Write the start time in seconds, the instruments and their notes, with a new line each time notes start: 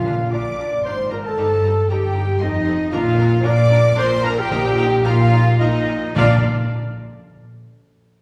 Already playing: double bass section A#1, cello section A#2, timpani A#2, clarinet F4, trumpet section F4, french horn section F4, violin section F5, flute F5
0.05 viola section D4 F4, violin section A#5
0.31 double bass section A#1, cello section A#2, viola section D4 F4, trumpet section D5, clarinet D5, french horn section D5, violin section A#5 D6, flute D6
0.59 viola section D4 F4, violin section A#5
0.84 double bass section G#1, cello section G#2, viola section D4 F4, clarinet C5, trumpet section C5, french horn section C5, violin section A#5 C6, flute C6
1.10 viola section D4 F4, clarinet A#4, trumpet section A#4, french horn section A#4, violin section A#5, flute A#5
1.24 trumpet section A4, clarinet A4, violin section A5, flute A5
1.28 french horn section A4
1.37 double bass section G1, cello section G2, viola section D#4 G4, violin section A#5
1.63 viola section D#4 G4, violin section A#5
1.88 double bass section G1, cello section G2, viola section D#4 G4, french horn section G4, trumpet section G4, clarinet G4, flute G5, violin section G5 A#5
2.14 viola section D#4 G4, violin section A#5
2.39 double bass section F1, cello section F2, viola section C4 A4, trumpet section D#4, french horn section D#4, clarinet D#4, violin section D#5 C6, flute D#5
2.65 viola section C4 A4, violin section C6
2.91 double bass section A#1, cello section A#2, timpani A#2, viola section D4 A#4, french horn section F4, trumpet section F4, clarinet F4, violin section F5 A#5, flute F5
3.19 viola section D4 A#4, violin section A#5
3.44 double bass section A#1, cello section A#2, viola section D4 A#4, french horn section D5, trumpet section D5, clarinet D5, violin section A#5 D6, flute D6
3.70 viola section D4 A#4, violin section A#5
3.96 double bass section A#1, cello section A#2, viola section D4 A#4, french horn section C5, clarinet C5, trumpet section C5, violin section A#5 C6, flute C6
4.23 viola section D4 A#4, trumpet section A#4, french horn section A#4, clarinet A#4, flute A#5, violin section A#5
4.38 trumpet section G4, clarinet G4, french horn section G4, violin section G5, flute G5
4.50 double bass section A#1, cello section A#2, timpani A#2, viola section D#4 A#4, violin section A#5
4.78 viola section D#4 A#4, violin section A#5
5.04 double bass section A#1, cello section A#2, viola section D#4 A#4, trumpet section F4, clarinet F4, french horn section F4, flute F5, violin section F5 A#5
5.32 viola section D#4 A#4, violin section A#5
5.59 double bass section A#1, cello section A#2, viola section D#4 A#4, trumpet section D#4, clarinet D#4, french horn section D#4, flute D#5, violin section D#5 A#5
5.88 viola section D#4 A#4, violin section A#5
6.15 double bass section A#1, cello section A#2, timpani A#2, french horn section D4, viola section F4 A#4, flute D5, trumpet section D5, violin section D5 F5, clarinet D5